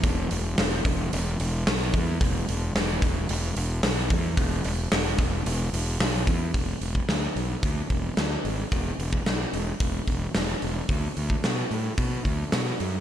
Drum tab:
HH |o-o-o-o-o-o-o-o-|o-o-o-o-o-o-o-o-|o-o-o-o-o-o-o-o-|o-o-o-o-o-o-o-o-|
SD |----o-------o---|----o-------o---|----o-------o---|----o-------o---|
BD |o-----o-------o-|o-----o-------o-|o-----o-------o-|o--o----o-o-----|

HH |o-o-o-o-o-o-o-o-|o-o-o-o-o-o-o-o-|
SD |----o-------o---|----o-------o---|
BD |o--o----o-o-----|o--o----o-o-----|